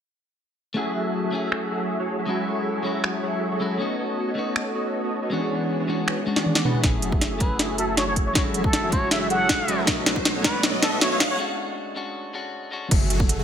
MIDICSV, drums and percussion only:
0, 0, Header, 1, 2, 480
1, 0, Start_track
1, 0, Key_signature, 3, "minor"
1, 0, Tempo, 379747
1, 962, Time_signature, 4, 2, 24, 8
1, 16987, End_track
2, 0, Start_track
2, 0, Title_t, "Drums"
2, 1921, Note_on_c, 9, 26, 88
2, 2048, Note_off_c, 9, 26, 0
2, 3840, Note_on_c, 9, 26, 85
2, 3966, Note_off_c, 9, 26, 0
2, 5762, Note_on_c, 9, 26, 85
2, 5888, Note_off_c, 9, 26, 0
2, 7681, Note_on_c, 9, 26, 83
2, 7808, Note_off_c, 9, 26, 0
2, 7922, Note_on_c, 9, 48, 55
2, 8043, Note_on_c, 9, 38, 53
2, 8048, Note_off_c, 9, 48, 0
2, 8162, Note_on_c, 9, 47, 69
2, 8170, Note_off_c, 9, 38, 0
2, 8284, Note_on_c, 9, 38, 64
2, 8288, Note_off_c, 9, 47, 0
2, 8401, Note_on_c, 9, 45, 86
2, 8410, Note_off_c, 9, 38, 0
2, 8523, Note_off_c, 9, 45, 0
2, 8523, Note_on_c, 9, 45, 76
2, 8639, Note_on_c, 9, 38, 45
2, 8639, Note_on_c, 9, 42, 73
2, 8642, Note_on_c, 9, 36, 105
2, 8649, Note_off_c, 9, 45, 0
2, 8766, Note_off_c, 9, 38, 0
2, 8766, Note_off_c, 9, 42, 0
2, 8768, Note_off_c, 9, 36, 0
2, 8878, Note_on_c, 9, 42, 65
2, 9004, Note_off_c, 9, 42, 0
2, 9004, Note_on_c, 9, 36, 94
2, 9119, Note_on_c, 9, 38, 46
2, 9119, Note_on_c, 9, 42, 80
2, 9131, Note_off_c, 9, 36, 0
2, 9245, Note_off_c, 9, 38, 0
2, 9245, Note_off_c, 9, 42, 0
2, 9358, Note_on_c, 9, 42, 63
2, 9361, Note_on_c, 9, 36, 97
2, 9484, Note_off_c, 9, 42, 0
2, 9488, Note_off_c, 9, 36, 0
2, 9598, Note_on_c, 9, 38, 49
2, 9598, Note_on_c, 9, 42, 75
2, 9725, Note_off_c, 9, 38, 0
2, 9725, Note_off_c, 9, 42, 0
2, 9838, Note_on_c, 9, 42, 62
2, 9964, Note_off_c, 9, 42, 0
2, 10078, Note_on_c, 9, 38, 52
2, 10078, Note_on_c, 9, 42, 76
2, 10205, Note_off_c, 9, 38, 0
2, 10205, Note_off_c, 9, 42, 0
2, 10318, Note_on_c, 9, 42, 65
2, 10321, Note_on_c, 9, 36, 58
2, 10444, Note_off_c, 9, 42, 0
2, 10447, Note_off_c, 9, 36, 0
2, 10558, Note_on_c, 9, 38, 53
2, 10558, Note_on_c, 9, 42, 70
2, 10561, Note_on_c, 9, 36, 115
2, 10684, Note_off_c, 9, 38, 0
2, 10684, Note_off_c, 9, 42, 0
2, 10687, Note_off_c, 9, 36, 0
2, 10798, Note_on_c, 9, 42, 65
2, 10924, Note_on_c, 9, 36, 104
2, 10925, Note_off_c, 9, 42, 0
2, 11038, Note_on_c, 9, 38, 60
2, 11038, Note_on_c, 9, 42, 75
2, 11050, Note_off_c, 9, 36, 0
2, 11165, Note_off_c, 9, 38, 0
2, 11165, Note_off_c, 9, 42, 0
2, 11277, Note_on_c, 9, 42, 63
2, 11281, Note_on_c, 9, 36, 103
2, 11404, Note_off_c, 9, 42, 0
2, 11407, Note_off_c, 9, 36, 0
2, 11518, Note_on_c, 9, 38, 64
2, 11518, Note_on_c, 9, 42, 73
2, 11644, Note_off_c, 9, 38, 0
2, 11644, Note_off_c, 9, 42, 0
2, 11758, Note_on_c, 9, 42, 62
2, 11884, Note_off_c, 9, 42, 0
2, 11999, Note_on_c, 9, 38, 67
2, 11999, Note_on_c, 9, 42, 75
2, 12001, Note_on_c, 9, 36, 61
2, 12125, Note_off_c, 9, 38, 0
2, 12125, Note_off_c, 9, 42, 0
2, 12127, Note_off_c, 9, 36, 0
2, 12239, Note_on_c, 9, 42, 66
2, 12365, Note_off_c, 9, 42, 0
2, 12479, Note_on_c, 9, 38, 69
2, 12479, Note_on_c, 9, 42, 70
2, 12481, Note_on_c, 9, 36, 117
2, 12605, Note_off_c, 9, 38, 0
2, 12605, Note_off_c, 9, 42, 0
2, 12607, Note_off_c, 9, 36, 0
2, 12720, Note_on_c, 9, 38, 75
2, 12720, Note_on_c, 9, 42, 65
2, 12844, Note_on_c, 9, 36, 105
2, 12847, Note_off_c, 9, 38, 0
2, 12847, Note_off_c, 9, 42, 0
2, 12961, Note_on_c, 9, 38, 76
2, 12961, Note_on_c, 9, 42, 77
2, 12970, Note_off_c, 9, 36, 0
2, 13087, Note_off_c, 9, 38, 0
2, 13087, Note_off_c, 9, 42, 0
2, 13201, Note_on_c, 9, 36, 105
2, 13201, Note_on_c, 9, 38, 76
2, 13201, Note_on_c, 9, 42, 62
2, 13328, Note_off_c, 9, 36, 0
2, 13328, Note_off_c, 9, 38, 0
2, 13328, Note_off_c, 9, 42, 0
2, 13441, Note_on_c, 9, 38, 82
2, 13441, Note_on_c, 9, 42, 75
2, 13568, Note_off_c, 9, 38, 0
2, 13568, Note_off_c, 9, 42, 0
2, 13683, Note_on_c, 9, 38, 83
2, 13683, Note_on_c, 9, 42, 62
2, 13809, Note_off_c, 9, 38, 0
2, 13809, Note_off_c, 9, 42, 0
2, 13922, Note_on_c, 9, 38, 87
2, 13922, Note_on_c, 9, 42, 75
2, 14048, Note_off_c, 9, 38, 0
2, 14048, Note_off_c, 9, 42, 0
2, 14161, Note_on_c, 9, 38, 88
2, 14161, Note_on_c, 9, 42, 62
2, 14162, Note_on_c, 9, 36, 62
2, 14287, Note_off_c, 9, 38, 0
2, 14287, Note_off_c, 9, 42, 0
2, 14288, Note_off_c, 9, 36, 0
2, 16322, Note_on_c, 9, 36, 113
2, 16322, Note_on_c, 9, 42, 76
2, 16322, Note_on_c, 9, 49, 100
2, 16448, Note_off_c, 9, 36, 0
2, 16448, Note_off_c, 9, 42, 0
2, 16448, Note_off_c, 9, 49, 0
2, 16562, Note_on_c, 9, 42, 70
2, 16685, Note_on_c, 9, 36, 104
2, 16688, Note_off_c, 9, 42, 0
2, 16802, Note_on_c, 9, 42, 82
2, 16811, Note_off_c, 9, 36, 0
2, 16929, Note_off_c, 9, 42, 0
2, 16987, End_track
0, 0, End_of_file